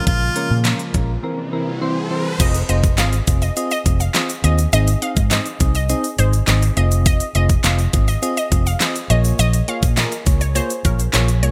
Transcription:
Already playing: analog synth pad C#3 F3 G#3 A#3 F4, synth keys G#3 C#4 A#4
0.07 fingered electric bass A#1, harmonica F4, kick, closed hi-hat, riser
0.36 synth keys G#3 C#4 A#4, closed hi-hat
0.51 fingered electric bass A#2
0.65 synth keys G#3 C#4 A#4, snare, clap, closed hi-hat
0.79 closed hi-hat
0.94 fingered electric bass A#1, synth keys G#3 C#4 A#4, kick, closed hi-hat
1.23 analog synth pad C3 E3 G3 E4, synth keys E3 C4 A#4
1.53 synth keys E3 C4 A#4
1.81 synth keys E3 C4 C5
2.11 synth keys E3 C4 C5
2.40 fingered electric bass F1, synth keys C4 F4 G#4 D#5, synth pluck D#5, kick, closed hi-hat, crash, shaker
2.54 closed hi-hat, shaker
2.69 fingered electric bass F1, synth keys C4 F4 G#4 C5, synth pluck D#5, closed hi-hat
2.83 kick, closed hi-hat, shaker
2.98 fingered electric bass G#1, synth keys C4 F4 G#4 D#5, synth pluck F5, snare, clap, closed hi-hat, shaker
3.13 closed hi-hat, shaker
3.27 fingered electric bass F1, synth keys C4 F4 G#4 D#5, kick, closed hi-hat, shaker
3.42 synth pluck D#5, closed hi-hat, shaker
3.56 synth keys C4 F4 G#4 D#5, closed hi-hat, shaker
3.71 synth pluck D#5, closed hi-hat, shaker
3.85 fingered electric bass F1, synth keys C4 F4 G#4 D#5, kick, closed hi-hat, shaker
4.00 synth pluck F5, closed hi-hat, shaker
4.14 synth keys C4 F4 G#4 D#5, snare, clap, closed hi-hat, shaker
4.29 closed hi-hat, shaker
4.44 fingered electric bass D#2, synth keys C4 F4 G#4 D#5, synth pluck D#5, closed hi-hat
4.58 closed hi-hat, shaker
4.73 fingered electric bass G#1, synth keys C4 D#4 G#4 D#5, synth pluck D#5, closed hi-hat, shaker
4.87 closed hi-hat, shaker
5.02 synth keys C4 D#4 G#4 D#5, synth pluck F5, closed hi-hat
5.16 fingered electric bass G#2, kick, closed hi-hat, shaker
5.31 synth keys C4 D#4 G#4 D#5, synth pluck D#5, snare, clap, closed hi-hat, shaker
5.46 closed hi-hat, shaker
5.60 fingered electric bass C2, synth keys C4 D#4 G#4 D#5, kick, closed hi-hat, shaker
5.75 synth pluck D#5, closed hi-hat, shaker
5.89 synth keys C4 D#4 G#4 D#5, closed hi-hat, shaker
6.04 closed hi-hat, shaker
6.18 fingered electric bass G#1, synth keys C4 D#4 G#4 D#5, synth pluck C5, closed hi-hat, shaker
6.33 closed hi-hat, shaker
6.47 fingered electric bass G#1, synth keys C4 D#4 G#4 D#5, snare, clap, closed hi-hat, shaker
6.62 closed hi-hat, shaker
6.77 fingered electric bass F1, synth keys C4 F4 G#4 D#5, synth pluck D#5, closed hi-hat
6.91 closed hi-hat, shaker
7.06 synth pluck D#5, kick, closed hi-hat, shaker
7.20 closed hi-hat, shaker
7.35 fingered electric bass F1, synth keys C4 F4 G#4 D#5, synth pluck D#5, closed hi-hat
7.49 kick, closed hi-hat, shaker
7.64 fingered electric bass F1, synth keys C4 F4 G#4 D#5, synth pluck F5, snare, clap, closed hi-hat, shaker
7.79 closed hi-hat, shaker
7.93 fingered electric bass G#1, synth keys C4 F4 G#4 D#5, kick, closed hi-hat, shaker
8.08 synth pluck D#5, closed hi-hat, shaker
8.22 synth keys C4 F4 G#4 D#5, closed hi-hat, shaker
8.37 synth pluck D#5, closed hi-hat, shaker
8.51 fingered electric bass F1, synth keys C4 F4 G#4 D#5, kick, closed hi-hat, shaker
8.66 synth pluck F5, closed hi-hat, shaker
8.80 synth keys C4 F4 G#4 D#5, snare, clap, closed hi-hat, shaker
8.95 closed hi-hat, shaker
9.10 fingered electric bass A#1, synth keys A#3 F4 G#4 C#5, synth pluck D#5, closed hi-hat
9.24 closed hi-hat, shaker
9.39 fingered electric bass A#1, synth pluck D#5, closed hi-hat, shaker
9.53 closed hi-hat, shaker
9.68 synth keys A#3 F4 G#4 C#5, synth pluck F5, closed hi-hat
9.82 fingered electric bass A#2, kick, closed hi-hat, shaker
9.97 synth keys A#3 F4 G#4 A#4, synth pluck D#5, snare, clap, closed hi-hat, shaker
10.12 closed hi-hat, shaker
10.26 fingered electric bass C#2, synth keys A#3 F4 G#4 C#5, kick, closed hi-hat, shaker
10.41 synth pluck C#5, closed hi-hat, shaker
10.55 synth keys A#3 F4 G#4 C#5, synth pluck C5, closed hi-hat, shaker
10.70 closed hi-hat, shaker
10.84 fingered electric bass A#1, synth keys A#3 F4 G#4 C#5, synth pluck A#4, kick, closed hi-hat, shaker
10.99 closed hi-hat, shaker
11.13 fingered electric bass A#1, synth keys A#3 F4 G#4 C#5, snare, clap, closed hi-hat, shaker
11.28 closed hi-hat, shaker
11.43 fingered electric bass C2, synth keys A#3 F4 G#4 C#5, synth pluck C#5, closed hi-hat

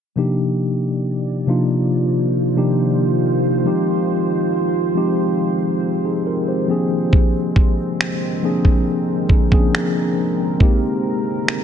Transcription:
0.16 tine electric piano C3 F3 A#3 D4 D#4 G4, ambient pad D#3 A#3 F4 C5 D5
1.47 tine electric piano C3 F3 A#3 D4 D#4 F4
2.55 tine electric piano C3 F3 A#3 D4 D#4 G4
3.64 tine electric piano F3 G#3 C4 D#4 G4, ambient pad G#3 C4
4.95 tine electric piano F3 G#3 C4 D#4 G4
6.05 tine electric piano D#4 G#4
6.27 tine electric piano F4 A#4
6.48 tine electric piano G4 C5
6.68 ambient pad D3 A#4, tine electric piano F3 A#3 C4 D4 G#4
7.13 kick
7.56 kick
8.01 finger snap
8.42 tine electric piano F3 A#3 C4 D4 G#4, ambient pad G5
8.65 kick
9.29 kick
9.51 tine electric piano F3 A#3 C4 C#4 G#4, kick
9.60 tine electric piano D4
9.75 finger snap
10.59 ambient pad D#3 G4, tine electric piano G#3 A#3 C4 D#4 G4, kick
11.48 finger snap

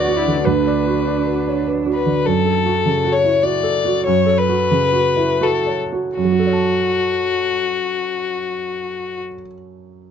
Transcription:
Already playing: grand piano D2 F#4 B4 C#5 D5 F#5, ambient pad D4 F#4 B4, cello F#4, violin D5
0.08 grand piano F#4
0.17 cello E4
0.28 grand piano D3
0.45 grand piano D2 B4, cello D4, violin B4
0.67 grand piano D5
0.87 grand piano F#4
1.08 grand piano D5
1.27 grand piano B4
1.48 grand piano C#5
1.67 grand piano B4
1.86 grand piano F#4
1.95 violin B4
2.06 grand piano D3
2.26 grand piano F#2, violin A4
2.46 grand piano A4
2.66 grand piano F#4
2.86 grand piano C#3
3.04 grand piano F#4
3.13 violin C#5
3.24 grand piano E4
3.43 grand piano F#4, violin D5
3.63 grand piano A4
3.85 grand piano F#4
4.06 grand piano F#2, violin C#5
4.26 grand piano A4
4.38 violin B4
4.49 grand piano F#4
4.71 grand piano C#3
4.93 grand piano F#4
5.17 grand piano E4
5.41 grand piano F#4, violin A4
5.66 grand piano C#5
5.93 grand piano F#4
6.17 grand piano F#2, violin F#4
6.25 grand piano F#3
6.32 grand piano F#4
6.39 grand piano A4
6.46 grand piano C#5
6.53 grand piano A5

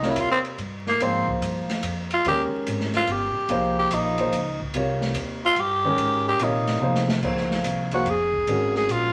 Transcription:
Already playing: upright bass C2, tenor saxophone D#4
0.03 grand piano C3 G3 F4 A#4 C#5, snare
0.10 tenor saxophone E4
0.16 upright bass D#2, hi-hat pedal, ride
0.20 tenor saxophone F4
0.32 tenor saxophone C4
0.45 ride
0.58 upright bass G2, ride
0.87 tenor saxophone A#3, snare
1.00 upright bass G#2, grand piano F3 A#3 D#4 G#4 C5, tenor saxophone C4, ride
1.27 muted upright bass stroke, kick
1.41 upright bass G2, hi-hat pedal, ride
1.69 muted upright bass stroke, snare, ride
1.83 upright bass F2, hi-hat pedal, ride
2.11 tenor saxophone F4, ride
2.25 upright bass D#2, grand piano D#3 G#3 C#4 G4 A#4, tenor saxophone G4, ride
2.53 muted upright bass stroke
2.66 upright bass G#1, hi-hat pedal, ride
2.80 snare
2.93 tenor saxophone F4, snare, ride
3.07 upright bass G1, ride
3.12 tenor saxophone G4
3.35 muted upright bass stroke
3.49 upright bass C2, grand piano F3 A#3 D#4 G#4 C5, ride
3.79 tenor saxophone G4
3.90 upright bass A#1, hi-hat pedal, ride
3.94 tenor saxophone D#4
4.18 grand piano F3 A#3 D#4 G#4 C5, ride
4.32 upright bass C#2, hi-hat pedal, ride
4.60 kick
4.73 upright bass C2, grand piano C3 G3 F4 A#4 C#5, ride
5.01 snare
5.14 upright bass D#2, hi-hat pedal, ride
5.45 tenor saxophone F4
5.55 upright bass G2, ride
5.60 tenor saxophone G4
5.84 grand piano D#3 G#3 C#4 G4 A#4
5.97 upright bass G#2, ride
6.28 tenor saxophone G4
6.38 upright bass A#2, grand piano C3 G3 F4 A#4 C#5, hi-hat pedal, ride
6.43 tenor saxophone D#4
6.67 snare, ride
6.80 upright bass C3, grand piano F3 A#3 D#4 G#4 C5
6.95 snare
7.09 snare
7.22 upright bass C#2, grand piano F3 A#3 D#4 G#4 C5, kick, crash
7.37 snare
7.51 snare
7.63 upright bass C2, hi-hat pedal, ride
7.91 grand piano F3 A#3 D#4 G#4 C5, tenor saxophone F#4, ride
8.05 upright bass F1, ride
8.10 tenor saxophone G#4
8.33 kick
8.47 upright bass G#1, grand piano D#3 G#3 C#4 F#4 A#4, ride
8.75 tenor saxophone G#4, snare
8.87 upright bass A#1, hi-hat pedal, ride
8.92 tenor saxophone F4

